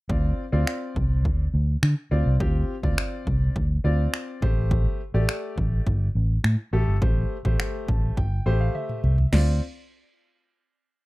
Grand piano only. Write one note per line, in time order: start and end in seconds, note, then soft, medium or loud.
0.09 0.43 C4 medium
0.09 0.43 F4 medium
0.09 0.43 D5 medium
0.52 1.43 C4 medium
0.52 1.43 F4 medium
0.52 1.43 D5 medium
2.11 2.34 C4 medium
2.11 2.34 F4 medium
2.11 2.34 D5 medium
2.40 2.74 C4 medium
2.40 2.74 F4 medium
2.40 2.74 G4 medium
2.83 3.62 C4 medium
2.83 3.63 F4 medium
2.83 3.63 D5 medium
3.84 4.42 C4 medium
3.84 4.42 F4 medium
3.84 4.42 D5 medium
4.42 5.00 A3 medium
4.42 5.00 G4 medium
4.42 5.00 C5 loud
5.14 6.05 A3 medium
5.14 6.05 G4 medium
5.14 6.05 D5 medium
6.73 6.95 A3 medium
6.73 6.96 G4 medium
6.73 6.96 A4 medium
7.01 7.36 A3 medium
7.01 7.36 G4 medium
7.01 7.36 C5 medium
7.45 8.24 A3 medium
7.45 8.24 G4 medium
7.45 8.24 C5 medium
7.88 8.15 A5 medium
8.17 8.57 G5 medium
8.46 9.14 A3 medium
8.46 9.14 G4 medium
8.46 9.14 C5 medium
8.60 8.74 F5 medium
8.75 9.29 E5 medium
9.33 9.59 C4 medium
9.33 9.59 F4 medium
9.33 9.59 D5 medium